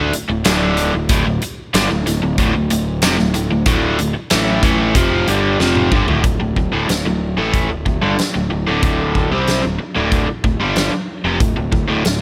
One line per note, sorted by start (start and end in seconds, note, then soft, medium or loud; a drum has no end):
0.00 0.11 D2 medium
0.00 0.12 D3 medium
0.00 0.12 A3 medium
0.00 0.12 D4 loud
0.13 muted overdriven electric guitar stroke soft
0.13 muted picked electric bass stroke soft
0.13 closed hi-hat medium
0.29 0.44 D1 medium
0.29 0.44 D2 medium
0.29 0.45 A2 medium
0.44 0.90 D1 medium
0.44 0.93 D2 medium
0.44 0.93 A2 medium
0.44 0.93 D3 loud
0.44 snare loud
0.44 closed hi-hat medium
0.77 closed hi-hat medium
0.94 1.09 D1 medium
0.94 1.09 D2 medium
0.94 1.10 A2 medium
1.09 1.24 D1 loud
1.09 1.25 D2 medium
1.09 1.25 A2 loud
1.09 kick loud
1.09 closed hi-hat loud
1.26 1.41 D1 medium
1.26 1.42 D2 medium
1.26 1.42 A2 medium
1.42 muted picked electric bass stroke soft
1.42 muted overdriven electric guitar stroke medium
1.42 closed hi-hat medium
1.74 1.89 G1 loud
1.74 1.89 G2 medium
1.74 1.89 D3 loud
1.74 snare loud
1.74 closed hi-hat loud
1.90 2.05 D1 medium
1.90 2.05 D2 medium
1.90 2.05 A2 medium
2.06 2.22 D1 medium
2.06 2.21 D2 medium
2.06 2.21 A2 medium
2.06 snare soft
2.06 closed hi-hat medium
2.22 2.37 D1 medium
2.22 2.38 D2 medium
2.22 2.38 A2 medium
2.38 2.53 D1 loud
2.38 2.53 D2 medium
2.38 2.54 A2 medium
2.38 kick medium
2.38 closed hi-hat medium
2.54 2.70 D1 medium
2.54 2.69 D2 medium
2.54 2.70 A2 medium
2.70 3.01 D1 medium
2.70 2.96 D2 medium
2.70 2.96 A2 medium
2.70 closed hi-hat medium
3.02 3.18 F1 loud
3.02 3.17 F2 medium
3.02 3.18 C3 medium
3.02 snare loud
3.02 closed hi-hat loud
3.18 3.34 D1 medium
3.18 3.33 D2 medium
3.18 3.33 A2 medium
3.18 snare soft
3.34 3.50 D1 medium
3.34 3.49 D2 medium
3.34 3.50 A2 medium
3.34 closed hi-hat medium
3.51 3.66 D1 medium
3.51 3.65 D2 medium
3.51 3.66 A2 medium
3.66 3.97 D1 medium
3.66 3.98 D2 medium
3.66 3.98 A2 loud
3.66 3.98 D3 loud
3.66 kick loud
3.66 closed hi-hat loud
3.99 4.15 D1 medium
3.99 4.14 D2 medium
3.99 4.15 A2 medium
3.99 closed hi-hat medium
4.15 muted overdriven electric guitar stroke medium
4.15 muted picked electric bass stroke soft
4.30 4.62 A1 medium
4.30 4.62 A2 medium
4.30 4.62 E3 medium
4.30 4.63 A3 medium
4.30 snare loud
4.30 closed hi-hat medium
4.63 4.93 A1 medium
4.63 4.95 A2 medium
4.63 4.95 E3 medium
4.63 4.95 A3 loud
4.63 kick loud
4.63 closed hi-hat medium
4.95 5.26 F1 medium
4.95 5.27 F2 medium
4.95 5.27 C3 medium
4.95 5.27 F3 loud
4.95 kick loud
4.95 closed hi-hat medium
5.27 5.58 G1 medium
5.27 5.59 G2 medium
5.27 5.59 D3 medium
5.27 5.60 G3 medium
5.27 closed hi-hat medium
5.60 5.90 F1 medium
5.60 5.91 F2 loud
5.60 5.91 C3 medium
5.60 5.92 F3 loud
5.60 snare medium
5.75 mid tom medium
5.92 6.07 G1 medium
5.92 6.07 G2 medium
5.92 6.08 D3 medium
5.92 kick medium
6.08 6.24 D1 loud
6.08 6.23 D2 medium
6.08 6.23 A2 medium
6.08 floor tom medium
6.24 6.39 D1 medium
6.24 6.39 D2 medium
6.24 6.39 A2 medium
6.24 kick loud
6.24 closed hi-hat medium
6.40 6.55 D1 medium
6.40 6.56 D2 medium
6.40 6.57 A2 medium
6.56 6.71 D1 medium
6.56 6.71 D2 medium
6.56 6.71 A2 medium
6.56 kick medium
6.72 6.87 D1 medium
6.72 6.88 D2 medium
6.72 6.88 A2 medium
6.88 7.03 D1 medium
6.88 7.04 D2 medium
6.88 7.04 A2 medium
6.88 snare loud
6.88 closed hi-hat medium
7.05 7.35 D1 medium
7.05 7.31 D2 medium
7.05 7.31 A2 medium
7.37 7.68 A1 medium
7.37 7.69 A2 medium
7.37 7.69 E3 medium
7.37 7.69 A3 medium
7.54 kick loud
7.54 closed hi-hat medium
7.69 7.85 D1 medium
7.69 7.84 D2 medium
7.69 7.85 A2 medium
7.86 8.01 D1 medium
7.86 8.01 D2 soft
7.86 8.01 A2 medium
7.86 kick medium
8.02 8.18 G1 medium
8.02 8.17 G2 medium
8.02 8.17 D3 medium
8.19 muted overdriven electric guitar stroke medium
8.19 muted picked electric bass stroke soft
8.19 snare loud
8.19 closed hi-hat medium
8.35 8.50 D1 medium
8.35 8.49 D2 soft
8.35 8.50 A2 medium
8.50 8.66 D1 medium
8.50 8.66 D2 medium
8.50 8.66 A2 medium
8.67 9.28 D1 loud
8.67 9.30 D2 medium
8.67 9.31 A2 medium
8.67 9.31 D3 medium
8.83 kick loud
8.83 closed hi-hat medium
9.15 kick medium
9.31 9.61 C2 medium
9.31 9.63 C3 medium
9.31 9.63 G3 medium
9.31 9.63 C4 medium
9.47 snare loud
9.47 closed hi-hat medium
9.63 9.79 D1 medium
9.63 9.78 D2 medium
9.63 9.80 A2 medium
9.79 muted overdriven electric guitar stroke medium
9.79 muted picked electric bass stroke soft
9.95 10.26 D1 medium
9.95 10.27 D2 medium
9.95 10.27 A2 medium
9.95 10.27 D3 medium
10.12 kick loud
10.12 closed hi-hat medium
10.28 muted overdriven electric guitar stroke medium
10.28 muted picked electric bass stroke soft
10.44 10.59 D1 medium
10.44 10.60 D2 medium
10.44 10.60 A2 medium
10.44 kick medium
10.59 10.90 G1 medium
10.59 10.92 G2 medium
10.59 10.92 D3 medium
10.59 10.92 G3 loud
10.76 snare loud
10.76 closed hi-hat medium
10.92 muted overdriven electric guitar stroke medium
10.92 muted picked electric bass stroke soft
11.24 11.40 F1 medium
11.24 11.40 F2 medium
11.24 11.40 C3 medium
11.40 11.56 D1 medium
11.40 11.55 D2 medium
11.40 11.56 A2 medium
11.40 kick loud
11.40 closed hi-hat medium
11.56 11.72 D1 medium
11.56 11.71 D2 medium
11.56 11.71 A2 medium
11.72 11.88 D1 medium
11.72 11.87 D2 medium
11.72 11.87 A2 medium
11.72 kick medium
11.88 12.04 D1 medium
11.88 12.03 D2 medium
11.88 12.03 A2 loud
12.04 12.21 D1 medium
12.04 12.19 D2 medium
12.04 12.19 A2 medium
12.04 snare loud
12.04 closed hi-hat medium